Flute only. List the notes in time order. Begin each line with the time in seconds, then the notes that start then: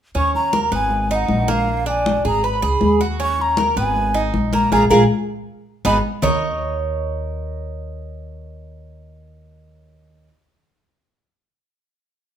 0.18 C#6
0.35 A#5
0.75 G#5
1.13 F#5
1.50 F5
1.88 G#5
2.27 A#5
2.46 B5
3.23 C#6
3.42 A#5
3.79 G#5
4.54 A#5
4.73 A#5
4.90 A#5
5.86 B5